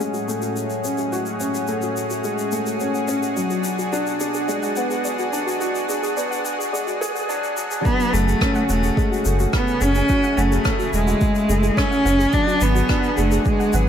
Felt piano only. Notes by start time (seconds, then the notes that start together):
Already playing: F#3 C#4
0.00 G#3
0.28 A3
0.84 C#4
1.12 F#4
1.40 C#4
1.68 A3
2.24 G#3
2.52 A3
2.81 C#4
3.08 C#4
3.37 F#3
3.93 D4
4.20 D4
4.48 G#3
4.77 B3
5.33 D4
5.61 F#4
5.89 D4
6.17 B3
6.73 G#3
7.01 G#4
7.29 D4
7.57 D4
7.86 F#3
8.42 C#4
8.69 C#4
8.97 G#3
9.26 A3
9.81 C#4
10.10 F#4
10.37 C#4
10.65 A3
11.22 G#3
11.50 A3
11.78 C#4
12.06 C#4
12.34 F#3
12.90 D4
13.18 D4
13.46 G#3
13.74 B3